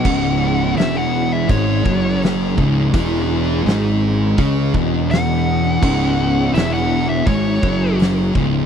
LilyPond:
<<
  \new Staff \with { instrumentName = "Lead electric guitar" } { \time 4/4 \key cis \minor \tempo 4 = 83 fis''4 e''16 fis''8 e''16 cis''4 r4 | r2. fis''4~ | fis''4 e''16 fis''8 e''16 cis''4 r4 | }
  \new Staff \with { instrumentName = "String machine" } { \time 4/4 \key cis \minor <cis' gis' dis''>1~ | <cis' gis' dis''>1~ | <cis' gis' dis''>1 | }
  \new Staff \with { instrumentName = "Distorted electric guitar" } { \clef bass \time 4/4 \key cis \minor <cis, cis>4 <e, e>4 <gis, gis>8 <fis, fis>4 <cis, cis>8 | <e, e>4 <gis, gis>4 <cis cis'>8 <e, e>4. | <cis, cis>4 <e, e>4 <gis, gis>8 <fis, fis>4 <cis, cis>8 | }
  \new Staff \with { instrumentName = "Distorted electric guitar" } { \clef bass \time 4/4 \key cis \minor <cis, cis>4 <e, e>4 <gis, gis>8 <fis, fis>4 <cis, cis>8 | <e, e>4 <gis, gis>4 <cis cis'>8 <e, e>4. | <cis, cis>4 <e, e>4 <gis, gis>8 <fis, fis>4 <cis, cis>8 | }
  \new Staff \with { instrumentName = "Fingered electric bass" } { \clef bass \time 4/4 \key cis \minor cis,,4 e,,4 gis,,8 fis,,4 cis,,8 | e,,4 gis,,4 cis,8 e,,4. | cis,,4 e,,4 gis,,8 fis,,4 cis,,8 | }
  \new DrumStaff \with { instrumentName = "Drums" } \drummode { \time 4/4 <cymc bd>4 <hho sn>4 <hho bd>8 bd8 <hho sn>8 bd8 | <hho bd>4 <hho sn>4 <hho bd>8 bd8 <hho sn>4 | <cymc bd>4 <hho sn>4 <hho bd>8 bd8 <hho sn>8 bd8 | }
>>